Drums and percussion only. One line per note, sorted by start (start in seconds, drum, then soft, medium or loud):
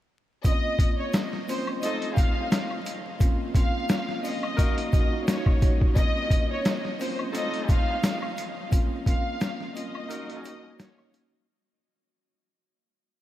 0.44 kick medium
0.44 closed hi-hat medium
0.44 shaker medium
0.79 kick medium
0.79 closed hi-hat medium
0.79 shaker soft
1.13 snare loud
1.13 closed hi-hat medium
1.13 shaker medium
1.33 snare soft
1.48 open hi-hat medium
1.48 shaker medium
1.67 high woodblock medium
1.82 closed hi-hat loud
1.82 shaker medium
2.02 closed hi-hat medium
2.17 kick loud
2.17 closed hi-hat medium
2.17 shaker medium
2.52 snare loud
2.52 closed hi-hat medium
2.52 shaker medium
2.71 high woodblock medium
2.86 closed hi-hat medium
2.86 shaker soft
3.20 kick medium
3.20 closed hi-hat medium
3.20 shaker medium
3.55 kick medium
3.55 closed hi-hat medium
3.55 shaker soft
3.89 snare loud
3.89 closed hi-hat medium
3.89 shaker medium
4.09 snare soft
4.24 open hi-hat medium
4.24 shaker medium
4.43 high woodblock medium
4.58 kick medium
4.58 closed hi-hat loud
4.58 shaker medium
4.78 closed hi-hat medium
4.93 kick loud
4.93 closed hi-hat medium
4.93 shaker medium
5.28 snare loud
5.28 closed hi-hat medium
5.28 shaker medium
5.46 kick loud
5.46 high woodblock medium
5.62 kick loud
5.62 closed hi-hat medium
5.62 shaker soft
5.81 kick medium
5.96 kick loud
5.96 closed hi-hat medium
5.96 shaker medium
6.30 kick medium
6.30 closed hi-hat medium
6.30 shaker soft
6.65 snare loud
6.65 closed hi-hat medium
6.65 shaker medium
6.85 snare soft
7.00 open hi-hat medium
7.00 shaker medium
7.19 high woodblock medium
7.34 closed hi-hat loud
7.34 shaker medium
7.54 closed hi-hat medium
7.68 kick loud
7.68 closed hi-hat medium
7.68 shaker medium
8.03 snare loud
8.03 closed hi-hat medium
8.03 shaker medium
8.22 high woodblock medium
8.37 closed hi-hat medium
8.37 shaker soft
8.72 kick loud
8.72 closed hi-hat medium
8.72 shaker medium
9.06 kick medium
9.06 closed hi-hat medium
9.06 shaker medium
9.41 snare loud
9.41 closed hi-hat medium
9.41 shaker medium
9.61 snare soft
9.76 closed hi-hat medium
9.76 shaker medium
9.95 high woodblock medium
10.10 closed hi-hat loud
10.10 shaker medium
10.30 closed hi-hat medium
10.44 closed hi-hat medium
10.44 shaker medium
10.79 snare loud
10.79 closed hi-hat medium
10.79 shaker medium
10.98 high woodblock medium
11.13 closed hi-hat medium
11.13 shaker soft